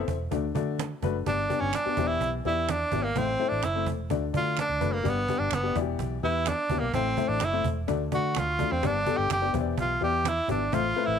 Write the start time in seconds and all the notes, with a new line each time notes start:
Already playing: C4 E4 A4 E5
0.08 E1, cajon bass, low conga
0.31 D2 D3 A3 D4 F#4 D5, cajon bass, muted conga, low conga
0.55 D3 A3 D4 F#4 D5, cajon bass, low conga
0.79 finger snap, cajon slap, high conga
1.02 F#1 A3 D4 F#4 B4, cajon bass, high conga
1.26 G1 G2 B3 D4 G4 D5, cajon bass, muted conga
1.50 B3 D4 G4 D5, cajon bass
1.60 G1 C#4
1.73 D4, finger snap, cajon slap, high conga
1.86 B3 D4 G4 D5, muted fingered electric bass stroke
1.97 E1 E3 B3 E4 G4 C5, cajon bass, low conga
2.04 E4 D5
2.21 B1, cajon bass, muted conga
2.45 E2 B3 E4 G4 D5, cajon slap, low conga
2.69 D4, finger snap, cajon slap, high conga
2.92 G#1 B3 E4 G4 D5, cajon bass, high conga
3.03 A#3
3.16 A1 A2 A3 C4 E4 C5, cajon bass, muted conga
3.39 A3 C4 E4 C5, cajon slap, muted conga
3.49 A1 D4
3.63 F#1 E4, finger snap, cajon slap, high conga
3.75 A3 C4 E4 C5
3.86 E1, cajon bass, low conga
4.10 D2 D3 A3 D4 F#4 D5, cajon bass, muted conga, low conga
4.33 D3 A3 D4 F4 F#4 D5, cajon bass, low conga
4.57 D4, finger snap, cajon slap, high conga
4.69 D2, high conga
4.81 F#1 A3 D4 F#4 B4, cajon bass, high conga
4.93 A#3
5.03 G1 G2 B3 D4 G4 D5, cajon bass, muted conga
5.09 B3
5.29 B3 D4 G4 D5, cajon bass
5.39 G1 D4
5.51 F#1 B3, finger snap, cajon slap, high conga
5.63 B3 D4 G4 D5, cajon slap
5.75 E1 E3 B3 E4 F#4 D5, cajon bass, low conga
5.82 G4
5.99 B1, cajon bass, muted conga
6.23 E2 B3 E4 G4 B4, cajon slap, low conga
6.46 D4, finger snap, cajon slap, high conga
6.70 D2 B3 E4 G4 D5, cajon bass, high conga
6.79 B1 A#3
6.93 A1 A2 A3 C4 E4 C5, cajon bass, muted conga
7.17 A3 C4 E4 C5, cajon bass, muted conga
7.28 A1 D4
7.40 F#1, finger snap, cajon slap, high conga
7.45 E4
7.53 A3 C4 E4 C5
7.64 E1, cajon bass, low conga
7.87 D2 D3 A3 D4 F#4 D5, cajon bass, muted conga, low conga
8.12 D3 A3 D4 F#4 D5, cajon bass, low conga
8.35 D2, finger snap, cajon slap, high conga
8.39 F4
8.59 A3 D4 F#4 D5, cajon bass, high conga
8.72 E2 C4
8.83 G1 G2 B3 D4 G4 D5, cajon bass, muted conga
9.06 B3 D4 G4 A4, cajon bass, muted conga
9.17 G1 G4
9.30 F#1 G4, finger snap, cajon slap, high conga
9.42 B3 D4 G4 D5, cajon slap
9.53 E1 E3 B3 E4 G4 C5, cajon bass, low conga
9.60 D5
9.78 B1 F4, cajon bass, muted conga
10.01 E2 B3 E4 G4 D5, cajon slap, low conga
10.25 E4, finger snap, cajon slap, high conga
10.48 G#1 B3 D4 E4 G4 D5, cajon bass, high conga
10.72 A1 A2 A3 C4 E4 F4 C5, cajon bass, muted conga
10.96 A3 C4 E4 B4, cajon slap, muted conga
11.06 A1 E4